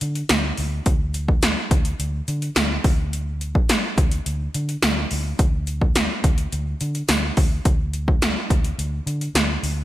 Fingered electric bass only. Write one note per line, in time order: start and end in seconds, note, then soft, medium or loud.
0.02 0.22 D3 medium
0.30 0.50 D2 loud
0.58 0.79 D2 medium
0.86 1.54 D2 loud
1.71 1.92 D2 loud
2.00 2.20 D2 medium
2.28 2.48 D3 loud
2.56 2.76 D2 loud
2.84 3.56 D2 loud
3.98 4.18 D2 loud
4.26 4.47 D2 loud
4.55 4.75 D3 medium
4.83 5.03 D2 loud
5.11 5.32 D2 loud
5.39 6.06 D2 loud
6.24 6.44 D2 loud
6.53 6.73 D2 medium
6.81 7.01 D3 medium
7.09 7.29 D2 loud
7.37 7.58 D2 medium
7.66 8.33 D2 loud
8.50 8.71 D2 loud
8.78 8.99 D2 medium
9.06 9.27 D3 medium
9.35 9.55 D2 loud
9.63 9.84 D2 medium